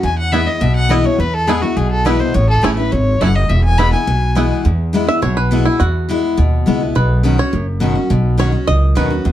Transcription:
0.03 E2 G#5
0.18 F#5
0.32 E3 G#3 B3 E4 E5
0.46 B3 E4 D#5
0.61 B1 B2 E5
0.75 F#5
0.89 E3 G#3 B3 E4 D#5
1.04 B3 E4 C#5
1.18 E2 B4
1.34 A4
1.47 E3 G#3 B3 E4 G#4
1.62 B3 E4 F#4
1.77 B1 B2 G#4
1.91 A4
2.05 E3 G#3 B3 E4 B4
2.19 B3 E4 C5
2.34 A1 A2 C#5
2.49 A4
2.62 A1 E3 A3 C#4 E4 G#4
2.77 C#4 E4 B4
2.92 G#1 G#2 C#5
3.21 F#1 F#2 A3 C#4 E4 F#5
3.36 D#5
3.49 E1 E2 E5
3.64 G#5
3.78 E3 G#3 B3 E4 B5
3.92 B3 E4 G#5
4.07 B1 B2
4.35 E3 G#3 B3 E4
4.65 E2
4.93 E3 G#3 B3 E4
5.07 B3 E4 E5
5.22 B1 B2 C#5
5.37 B4
5.51 E3 G#3 B3 E4
5.65 B3 E4
5.80 E2 F#4
6.09 E3 G#3 B3 E4
6.37 D#2 B2
6.66 C#2 E3 G#3 B3 E4
6.80 B3 E4
6.95 B1 B2 B4
7.23 B2 D#3 C#4 F#4
7.38 C#4 F#4 C#5
7.53 F#1 F#2
7.80 B2 D#3 C#4 F#4
7.95 C#4 F#4
8.10 B1 B2
8.38 B2 D#3 C#4 F#4 C#5
8.52 C#4 F#4
8.67 C#2 F#2 D#5
8.95 D#2 B2 D#3 C#4 F#4 B4
9.10 C#4 F#4
9.25 E2

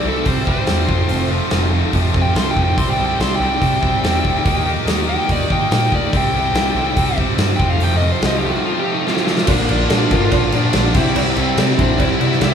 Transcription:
Already playing: G3 E4 C5
0.04 C2 C3 E3 G3 C4 E4
0.09 A4
0.24 C2 C3 E3 G3 C4 E4 C5, kick, open hi-hat
0.47 C2 C3 E3 G3 C4 E4 C5, kick
0.67 E2 C3 E3 G3 C4 E4, snare, open hi-hat
0.88 F1 F2 C3 F3 A3 C4 F4 C5, kick
1.09 F1 F2 C3 F3 A3 C4 F4, open hi-hat
1.30 F2 C3 F3 A3 C4 F4
1.51 F1 F2 C3 F3 A3 C4 F4, snare, open hi-hat
1.73 F2 C3 F3 A3 C4 F4
1.93 F1 F2 C3 F3 A3 C4 F4, kick, open hi-hat
2.14 F2 C3 F3 A3 C4 F4, kick
2.22 G5
2.35 C2 F2 C3 F3 A3 C4 F4 C6, snare, open hi-hat
2.51 G5
2.57 F1 F2 C3 F3 A3 C4 F4, kick
2.64 G5
2.75 C2 C3 E3 G3 C4 E4 C5 C6, kick, open hi-hat
2.90 G5
2.98 C2 C3 E3 G3 C4 E4
3.06 G5
3.18 C2 C3 E3 G3 C4 E4 C6, snare, open hi-hat
3.35 G5
3.40 C2 C3 E3 G3 C4 E4
3.48 G5
3.61 C2 C3 E3 G3 C4 E4, kick, open hi-hat
3.82 C2 C3 E3 G3 C4 E4, kick
4.04 E2 C3 E3 G3 C4 E4, snare, open hi-hat
4.25 D2 C3 E3 G3 C4 E4, kick
4.45 D#2 D#3 G3 A#3 D#4 F4 G4 D#5, kick, open hi-hat
4.66 D#3 A#3 D#4 G4
4.86 D#2 D#3 A#3 D#4 G4, snare, open hi-hat
5.09 D#3 A#3 D#4 G4 G5
5.29 D#2 D#3 A#3 D#4 G4 D5, kick, open hi-hat
5.50 D#3 A#3 D#4 G4 G5, kick
5.71 A#2 D#3 A#3 D#4 G4 G5, snare, open hi-hat
5.92 D2 D#3 A#3 D#4 G4 D5, kick
6.12 C2 C3 E3 G3 C4 E4 C5, kick, open hi-hat
6.17 G5
6.34 C2 C3 E3 G3 C4 E4 G5
6.54 C2 C3 E3 G3 C4 E4, snare, open hi-hat
6.75 C2 C3 E3 G3 C4 E4
6.97 C2 C3 E3 G3 C4 E4, kick, open hi-hat
7.17 C2 C3 E3 G3 C4 E4, kick
7.37 G2 C3 E3 G3 C4 E4, snare, open hi-hat
7.56 F1 F2 C3 F3 A3 C5 G5, kick
7.60 F3 A3 C4 F4
7.70 F5
7.79 F1 F2 C3 F3 A3 C4 F4 G5, open hi-hat
7.96 D#5
8.01 F2 C3 F3 A3 C4 F4
8.12 C5
8.22 C2 F2 C3 F3 A3 C4 F4, snare, open hi-hat
8.26 D#5
8.38 G4
8.44 F2 C3 F3 A3 C4 F4
8.52 F#4
8.64 F2 C3 F3 A3 C4 F4
8.80 G4
8.85 F2 C3 F3 A3 C4 F4
8.94 D#4
9.06 F2 C3 F3 A3 C4 E4 F4, snare
9.17 snare
9.27 F2 C3 F3 A3 C4 F4, snare
9.38 snare
9.47 A#1 A#2 D3 F3 A#3 D4 F4 A#4, kick, crash, cowbell
9.69 A#1 F3 A#3 D4 F4, crash
9.90 A#2 D3 F3 A#3 D4 F4, snare, cowbell, crash
10.11 G1 A#3 D4 F4 A#4, kick, crash
10.31 A#1 A#2 F3 A#3 D4 F4, kick, cowbell, crash
10.52 A#2 F3 A#3 D4 F4, cowbell, crash
10.73 A#1 D3 F3 A#3 D4 F4, snare, cowbell, crash
10.94 C2 C3 E3 G3 C4 E4 G4 C5, kick, crash
10.98 E4
11.15 C2 C3 E3 G3 C4 E4, cowbell, crash
11.36 C2 G3 C4 E4, crash
11.57 C3 E3 G3 C4 E4, snare, cowbell, crash
11.79 A#1 G3 C4 D4 E4 G4 C5, kick, crash
11.98 C2 C3 E3 G3 C4 E4, kick, cowbell, crash
12.20 C3 G3 C4 E4, cowbell, crash
12.32 snare
12.41 C2 C3 E3 G3 C4 E4, snare, cowbell, crash

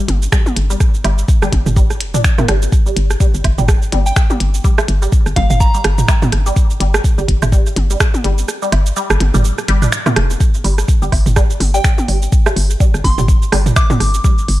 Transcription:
0.08 G1, closed hi-hat, high tom
0.22 shaker
0.32 G3, finger snap, kick, cross-stick, shaker
0.46 high tom, shaker
0.56 G1, closed hi-hat
0.70 G3, shaker
0.80 kick, cross-stick, shaker
0.94 shaker
1.04 G1 G3, closed hi-hat, high woodblock
1.18 shaker
1.28 kick, shaker
1.42 G1 G3, cross-stick, shaker
1.52 G1, kick, closed hi-hat, high tom
1.66 G1, mid tom, shaker
1.76 G3, kick, shaker
1.90 cross-stick, shaker
2.00 F1, closed hi-hat
2.14 D4, mid tom, shaker
2.24 finger snap, kick, shaker
2.38 A#3, mid tom, high tom, high woodblock, shaker
2.48 G1 G3, cross-stick, closed hi-hat
2.62 shaker
2.72 kick, shaker
2.86 G3, shaker
2.96 G1, closed hi-hat
3.10 cross-stick, shaker
3.20 G3, kick, shaker
3.34 G1, shaker
3.44 G1, kick, closed hi-hat, high woodblock
3.58 G1 G3, mid tom, shaker
3.68 kick, cross-stick, shaker
3.82 shaker
3.92 G1 G3, closed hi-hat, high tom
4.06 G5, shaker
4.16 finger snap, kick, cross-stick, shaker
4.30 G3, high tom, shaker
4.40 G1, closed hi-hat
4.54 shaker
4.64 G3, kick, shaker
4.78 cross-stick, high woodblock, shaker
4.88 G1, closed hi-hat
5.02 G3, shaker
5.12 kick, shaker
5.26 G1, cross-stick, shaker
5.36 G1 G3 F5, kick, closed hi-hat, high tom
5.50 G1 F5, mid tom, shaker
5.60 A#5, kick, shaker
5.74 G3, shaker
5.84 G1, cross-stick, closed hi-hat
5.98 mid tom, shaker
6.08 G3, finger snap, kick, high woodblock, shaker
6.22 mid tom, high tom, shaker
6.32 G1, cross-stick, closed hi-hat
6.46 G3, shaker
6.56 kick, shaker
6.70 shaker
6.80 G1 G3, closed hi-hat
6.94 cross-stick, shaker
7.04 kick, shaker
7.18 G1 G3, shaker
7.28 G1, kick, closed hi-hat
7.42 G1, cross-stick, mid tom, high woodblock, shaker
7.52 G3, kick, shaker
7.66 shaker
7.76 G1, closed hi-hat, high tom
7.90 G3, shaker
8.00 finger snap, kick, cross-stick, shaker
8.14 high tom, shaker
8.24 G1 G3, closed hi-hat
8.38 shaker
8.48 cross-stick, shaker
8.62 G3, shaker
8.72 G1, closed hi-hat, high woodblock
8.86 shaker
8.96 G3, shaker
9.10 G1, cross-stick, shaker
9.20 G1, closed hi-hat, high tom
9.34 G1 G3, mid tom, shaker
9.44 shaker
9.58 cross-stick, shaker
9.68 G1 G3, closed hi-hat
9.82 D4, mid tom, shaker
9.92 finger snap, shaker
10.06 A#3, mid tom, high tom, high woodblock, shaker
10.16 F1, cross-stick, closed hi-hat
10.30 shaker
10.40 kick, shaker
10.54 shaker
10.64 G1 G3, open hi-hat
10.78 cross-stick, shaker
10.88 kick, shaker
11.02 G1 G3, shaker
11.12 G1, kick, open hi-hat, high woodblock
11.26 G1, mid tom, shaker
11.36 G3, kick, cross-stick, shaker
11.50 shaker
11.60 G1, open hi-hat, high tom
11.74 G3 G5, shaker
11.84 finger snap, kick, cross-stick, shaker
11.98 high tom, shaker
12.08 G1 G3, open hi-hat
12.22 shaker
12.32 kick, shaker
12.46 G3, cross-stick, high woodblock, shaker
12.56 G1, open hi-hat
12.70 shaker
12.80 G3, kick, shaker
12.94 G1, cross-stick, shaker
13.04 G1 C6, kick, open hi-hat, high tom
13.18 G1 G3, mid tom, shaker
13.28 kick, shaker
13.42 shaker
13.52 G1 G3, cross-stick, open hi-hat
13.66 mid tom, shaker
13.76 D6, finger snap, kick, high woodblock, shaker
13.90 G3, mid tom, high tom, shaker
14.00 G1, cross-stick, open hi-hat
14.14 shaker
14.24 G3, kick, shaker
14.38 shaker
14.48 G1, open hi-hat

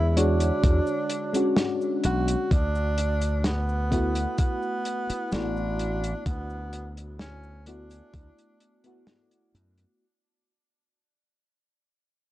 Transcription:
Already playing: E2 D3 G#3 E4 F#4 C#5
0.10 E4
0.16 G#3 D4 F#4 C#5, closed hi-hat
0.40 closed hi-hat, cabasa
0.63 E2, kick, closed hi-hat, cabasa
0.87 cabasa
1.10 closed hi-hat
1.33 G#3 C#4 D4 F#4, closed hi-hat, cabasa
1.57 snare, closed hi-hat, cabasa
1.81 cabasa
2.04 B1 F#4, closed hi-hat
2.28 closed hi-hat, cabasa
2.51 D2 D4, kick, closed hi-hat, cabasa
2.75 cabasa
2.98 closed hi-hat
3.21 closed hi-hat, cabasa
3.44 B3, snare, closed hi-hat, cabasa
3.69 cabasa
3.91 A3 B3 E4 F#4, kick, closed hi-hat
4.15 closed hi-hat, cabasa
4.38 B3, kick, closed hi-hat, cabasa
4.62 cabasa
4.85 closed hi-hat
5.10 muted slap bass stroke, closed hi-hat, cabasa
5.31 A1 A3 B3 D4 E4 F#4, snare, closed hi-hat, cabasa
5.57 cabasa
5.79 closed hi-hat
6.04 closed hi-hat, cabasa
6.26 D2 B3, kick, closed hi-hat, cabasa
6.50 cabasa
6.73 closed hi-hat
6.97 closed hi-hat, cabasa
7.19 C#4, snare, closed hi-hat, cabasa
7.43 cabasa
7.66 A3 B3 D4 E4 F#4, closed hi-hat
7.90 closed hi-hat, cabasa
8.14 D2, kick, closed hi-hat, cabasa
8.38 closed hi-hat, cabasa
8.60 closed hi-hat
8.84 A3 B3 E4 F#4, closed hi-hat, cabasa
9.07 snare, closed hi-hat, cabasa
9.31 closed hi-hat, cabasa
9.54 F#2, closed hi-hat
9.78 closed hi-hat, cabasa

